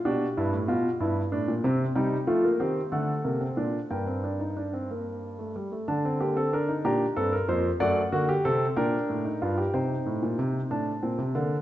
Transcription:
0.05 0.25 B2 medium
0.05 0.25 D4 medium
0.05 1.92 G4 medium
0.37 0.52 G2 medium
0.37 0.57 E4 medium
0.53 0.68 A2 medium
0.68 0.88 B2 medium
0.68 0.88 F4 medium
1.00 1.20 G2 medium
1.00 1.20 E4 medium
1.32 1.47 A2 medium
1.32 1.52 D4 medium
1.48 1.64 A#2 medium
1.64 1.84 C3 medium
1.64 1.84 C4 medium
1.95 2.16 C3 medium
1.95 2.16 G3 medium
1.95 2.16 D#4 medium
1.95 2.89 G5 medium
2.27 2.47 F3 medium
2.27 2.43 A3 medium
2.27 2.47 F4 medium
2.44 2.60 A#3 medium
2.60 2.80 D#3 medium
2.60 2.80 C4 medium
2.60 2.80 G4 medium
2.92 3.12 D3 medium
2.92 3.12 A3 medium
2.92 3.87 A4 medium
2.92 3.87 F#5 medium
3.24 3.45 C3 medium
3.24 3.41 A#3 medium
3.41 3.57 C4 medium
3.57 3.78 A#2 medium
3.57 3.78 D4 medium
3.90 5.51 G2 medium
3.90 4.07 A#3 medium
3.90 5.51 A#4 medium
3.90 5.51 G5 medium
4.07 4.23 C4 medium
4.24 4.40 D4 medium
4.40 4.56 D#4 medium
4.57 4.73 D4 medium
4.73 4.89 C4 medium
4.91 5.38 A#3 medium
5.39 5.55 A3 medium
5.56 5.71 G3 medium
5.72 5.88 A3 medium
5.88 6.82 D3 medium
5.88 6.04 D4 medium
5.88 6.82 A5 medium
6.05 6.20 C4 medium
6.20 6.36 A#3 medium
6.20 6.36 G4 medium
6.37 6.52 C4 medium
6.37 6.52 A4 medium
6.53 6.68 D4 medium
6.53 6.73 A#4 medium
6.68 6.84 D#4 medium
6.85 7.04 A#2 medium
6.85 7.05 D4 medium
6.85 7.05 G4 medium
6.85 7.78 A#5 medium
7.16 7.36 G2 medium
7.16 7.36 C4 medium
7.16 7.32 A4 medium
7.32 7.48 A#4 medium
7.48 7.68 F2 medium
7.48 7.68 A#3 medium
7.48 7.69 C5 medium
7.80 8.00 F#2 medium
7.80 8.00 A3 medium
7.80 8.00 D5 loud
7.80 8.74 F#5 medium
8.12 8.32 D3 medium
8.12 8.32 A#3 medium
8.12 8.28 F#4 loud
8.29 8.44 G4 loud
8.45 8.65 C3 medium
8.45 8.65 C4 medium
8.45 8.65 A4 loud
8.77 8.97 A#2 medium
8.77 9.23 D4 medium
8.77 9.70 A#4 medium
8.77 9.70 G5 medium
9.10 9.29 A2 medium
9.25 9.41 D#4 medium
9.42 9.62 G2 medium
9.42 9.57 F4 medium
9.58 9.73 G4 medium
9.74 9.94 C3 medium
9.74 10.68 D#4 medium
9.74 11.62 C5 medium
9.74 10.68 G5 medium
10.06 10.22 A2 medium
10.22 10.38 A#2 medium
10.39 10.59 C3 medium
10.71 10.90 A2 medium
10.71 10.91 D4 medium
10.71 11.62 A5 medium
11.03 11.18 A#2 medium
11.03 11.22 C4 medium
11.18 11.34 C3 medium
11.35 11.55 D3 medium
11.35 11.55 A#3 medium

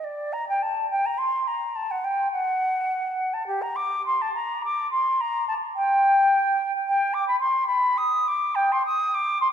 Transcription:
0.04 0.34 D5 medium
0.32 0.47 A#5 medium
0.49 0.63 G5 medium
0.62 0.90 A5 medium
0.90 1.07 G5 medium
1.05 1.19 A#5 medium
1.18 1.49 C6 medium
1.47 1.77 A#5 medium
1.75 1.92 A5 medium
1.91 2.05 F#5 medium
2.04 2.31 G5 medium
2.31 3.35 F#5 medium
3.33 3.46 A5 medium
3.46 3.63 G4 medium
3.61 3.77 A#5 medium
3.76 4.05 D6 medium
4.06 4.23 C6 medium
4.21 4.33 A5 medium
4.34 4.62 A#5 medium
4.64 4.90 D6 medium
4.91 5.22 C6 medium
5.20 5.47 A#5 medium
5.48 5.54 A5 medium
5.75 6.71 G5 medium
6.86 7.15 G5 medium
7.13 7.27 D6 medium
7.28 7.39 B5 medium
7.40 7.66 C6 medium
7.67 7.99 B5 medium
7.97 8.29 D#6 medium
8.27 8.56 D6 medium
8.55 8.73 G5 loud
8.72 8.85 C6 medium
8.85 9.15 D#6 medium
9.14 9.40 D6 medium
9.41 9.47 C6 medium

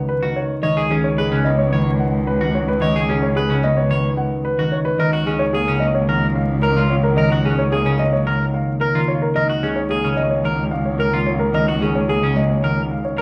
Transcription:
0.00 0.48 C#2 medium
0.00 0.66 C#3 medium
0.00 0.22 D#3 medium
0.00 1.44 B3 medium
0.09 0.26 B4 medium
0.23 0.62 D#3 medium
0.23 0.40 F#4 medium
0.36 0.54 C#5 medium
0.63 4.85 C#2 medium
0.63 0.89 D#3 medium
0.63 0.81 C#5 medium
0.63 0.81 D#5 medium
0.77 0.95 G#4 medium
0.90 1.72 D#3 medium
0.90 1.08 C#4 medium
0.90 1.08 G#4 medium
1.04 1.22 C#5 medium
1.18 1.36 G#4 medium
1.18 1.36 B4 medium
1.32 3.48 C#3 medium
1.32 1.49 C#4 medium
1.44 3.62 B3 medium
1.44 1.63 D#5 medium
1.59 1.76 C#5 medium
1.73 2.39 D#3 medium
1.73 1.90 C#5 medium
2.00 2.17 F#5 medium
2.27 2.45 B4 medium
2.40 2.80 D#3 medium
2.40 2.58 F#4 medium
2.55 2.72 C#5 medium
2.68 2.86 B4 medium
2.81 3.07 D#3 medium
2.81 2.99 C#5 medium
2.81 2.99 D#5 medium
2.96 3.13 G#4 medium
3.08 3.89 D#3 medium
3.08 3.27 C#4 medium
3.08 3.27 G#4 medium
3.23 3.40 C#5 medium
3.36 3.54 G#4 medium
3.36 3.54 B4 medium
3.49 5.02 C#3 medium
3.49 3.67 C#4 medium
3.63 5.02 B3 medium
3.63 3.81 D#5 medium
3.77 3.95 C#5 medium
3.90 4.58 D#3 medium
3.90 4.08 C#5 medium
4.17 4.35 F#5 medium
4.45 4.63 B4 medium
4.59 4.98 D#3 medium
4.59 4.77 F#4 medium
4.72 4.90 C#5 medium
4.85 5.03 B4 medium
4.99 9.21 C#2 medium
4.99 5.25 D#3 medium
4.99 5.13 A#4 medium
4.99 5.17 D#5 medium
5.13 5.31 F#4 medium
5.26 6.08 D#3 medium
5.26 5.45 C#4 medium
5.26 5.44 G#4 medium
5.39 5.58 C#5 medium
5.53 7.70 A#3 medium
5.53 5.71 G#4 medium
5.53 5.72 G#4 medium
5.68 7.84 C#3 medium
5.68 5.86 C#4 medium
5.80 7.98 G#3 medium
5.80 5.99 D#5 medium
5.95 6.13 C#5 medium
6.09 6.75 D#3 medium
6.09 6.26 A#4 medium
6.35 6.54 F5 medium
6.62 6.81 A#4 medium
6.76 7.16 D#3 medium
6.76 6.95 F4 medium
6.90 7.08 C#5 medium
7.03 7.22 A#4 medium
7.17 7.43 D#3 medium
7.17 7.31 A#4 medium
7.17 7.35 D#5 medium
7.32 7.49 F#4 medium
7.44 8.25 D#3 medium
7.44 7.63 C#4 medium
7.44 7.63 G#4 medium
7.59 7.76 C#5 medium
7.71 9.89 A#3 medium
7.71 7.90 G#4 medium
7.85 9.38 C#3 medium
7.85 8.04 C#4 medium
7.99 10.16 G#3 medium
7.99 8.17 D#5 medium
8.13 8.31 C#5 medium
8.27 8.94 D#3 medium
8.27 8.45 A#4 medium
8.54 8.72 F5 medium
8.80 8.99 A#4 medium
8.95 9.35 D#3 medium
8.95 9.13 F4 medium
9.08 9.26 C#5 medium
9.22 9.40 A#4 medium
9.36 13.22 C#2 medium
9.36 9.62 D#3 medium
9.36 9.49 A#4 medium
9.36 9.54 D#5 medium
9.49 9.67 F#4 medium
9.63 10.43 D#3 medium
9.63 9.81 C#4 medium
9.63 9.81 G#4 soft
9.76 9.94 C#5 medium
9.89 12.08 A#3 medium
9.89 10.08 G#4 medium
10.04 12.21 C#3 medium
10.04 10.22 C#4 medium
10.17 12.35 G#3 medium
10.17 10.35 D#5 medium
10.30 10.49 C#5 medium
10.44 11.12 D#3 medium
10.44 10.63 A#4 medium
10.71 10.90 F5 medium
10.85 11.04 C#5 medium
10.99 11.17 A#4 medium
11.13 11.53 D#3 medium
11.13 11.31 F4 medium
11.27 11.45 C#5 medium
11.39 11.58 A#4 medium
11.54 11.81 D#3 medium
11.54 11.68 A#4 medium
11.54 11.72 D#5 medium
11.68 11.86 F#4 medium
11.81 12.63 D#3 medium
11.81 11.99 C#4 medium
11.81 11.99 G#4 soft
11.95 12.13 C#5 medium
12.09 13.22 A#3 medium
12.09 12.26 G#4 medium
12.09 12.27 G#4 medium
12.22 13.22 C#3 medium
12.22 12.40 C#4 medium
12.36 13.22 G#3 medium
12.36 12.54 D#5 medium
12.50 12.67 C#5 medium
12.64 13.22 D#3 medium
12.64 12.81 A#4 medium
12.91 13.08 F5 medium
13.05 13.22 C#5 medium
13.18 13.22 A#4 medium

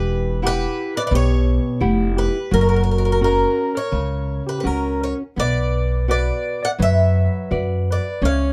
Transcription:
0.00 0.63 E1 medium
0.00 0.41 E3 medium
0.00 0.39 G4 medium
0.00 0.45 B4 medium
0.42 0.98 E4 medium
0.42 0.99 G4 medium
0.42 0.93 G4 medium
0.42 0.98 F#5 medium
0.47 0.97 B4 loud
0.97 1.02 B4 medium
0.97 1.01 D5 medium
1.06 1.12 B4 medium
1.06 1.13 D5 medium
1.11 1.57 B1 medium
1.11 1.79 B2 medium
1.11 1.79 G4 medium
1.15 1.79 C#5 medium
1.80 2.27 F1 medium
1.80 2.37 E4 medium
1.80 2.38 G4 medium
1.80 2.37 F#5 soft
2.16 2.49 G4 medium
2.16 2.53 B4 medium
2.51 3.43 F#1 medium
2.51 3.20 F#3 medium
2.51 2.58 F#4 medium
2.51 2.60 A#4 medium
2.60 2.65 F#4 soft
2.60 2.68 A#4 medium
2.67 2.73 F#4 medium
2.67 2.75 A#4 medium
2.76 2.80 F#4 soft
2.76 2.82 A#4 medium
2.81 2.88 F#4 soft
2.81 2.90 A#4 medium
2.90 2.96 F#4 soft
2.90 2.97 A#4 soft
2.97 3.04 F#4 soft
2.97 3.04 A#4 medium
3.05 3.09 F#4 soft
3.05 3.11 A#4 soft
3.10 3.17 F#4 soft
3.10 3.19 A#4 medium
3.21 3.78 C#4 medium
3.21 3.78 F#4 soft
3.21 3.71 F#4 medium
3.21 3.78 A#4 medium
3.21 3.77 A#4 medium
3.75 4.42 A#4 medium
3.75 4.48 C#5 medium
3.92 4.39 C#2 medium
3.92 4.62 C#3 medium
4.47 4.57 G4 medium
4.47 4.59 B4 medium
4.58 4.64 G4 soft
4.58 4.67 B4 medium
4.63 5.12 C#2 medium
4.63 5.22 C#4 soft
4.63 5.22 F#4 soft
4.63 5.01 F#4 medium
4.63 5.22 A#4 medium
4.63 5.03 A#4 medium
5.01 5.17 A#4 medium
5.01 5.13 C#5 medium
5.36 6.30 B1 medium
5.36 6.06 B3 medium
5.36 6.05 B4 medium
5.36 6.10 D5 medium
6.08 6.65 F#4 soft
6.08 6.66 B4 soft
6.08 6.59 B4 medium
6.08 6.66 D5 medium
6.08 6.64 D5 medium
6.63 6.70 D5 medium
6.63 6.70 F#5 medium
6.79 7.26 F#2 medium
6.79 7.48 F#3 medium
6.79 7.51 B4 medium
6.79 7.52 E5 medium
7.51 7.97 F#2 medium
7.51 8.07 F#4 soft
7.51 8.07 B4 medium
7.51 8.07 D5 medium
7.91 8.21 B4 medium
7.91 8.21 D5 medium
8.22 8.53 C#2 medium
8.22 8.53 C#4 medium
8.22 8.53 C#5 medium
8.22 8.53 F5 medium

